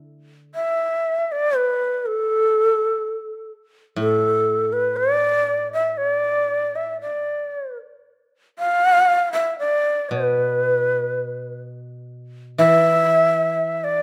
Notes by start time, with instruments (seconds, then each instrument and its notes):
Already playing: koto D3 E4 A4
0.55 shakuhachi E5
1.32 shakuhachi D5
1.56 shakuhachi B4
2.06 shakuhachi A4
3.96 koto A2, shakuhachi A4
4.72 shakuhachi B4
4.96 shakuhachi D5
5.73 shakuhachi E5
5.97 shakuhachi D5
6.75 shakuhachi E5
7.01 shakuhachi D5
8.59 shakuhachi F5
9.33 shakuhachi E5
9.59 shakuhachi D5
10.09 koto B2, shakuhachi B4
12.58 koto E3, shakuhachi E5
13.84 shakuhachi D5